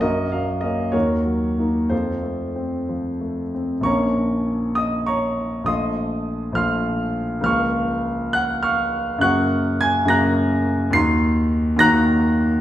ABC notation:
X:1
M:6/8
L:1/8
Q:3/8=67
K:Bbm
V:1 name="Grand piano"
[GBe] f e [GBd]3 | [F=Ac]4- [FAc] z | [dbd']3 [ee'] [dbd']2 | [ec'e']3 [fc'f']3 |
[fd'f']3 [gg'] [fd'f']2 | [gd'g']2 [aa'] [bg'b']3 | [c'c'']3 [bg'b']3 |]
V:2 name="Grand piano"
G,, G, [B,D] E,, G, [B,E] | F,, =A, C F, A, C | [B,,,F,B,D]6 | [B,,,F,=A,F]3 [B,,,F,A,F]3 |
[D,,F,B,F]6 | [G,,D,B,G]3 [G,,D,B,G]3 | [E,,E,EG]3 [E,,E,EG]3 |]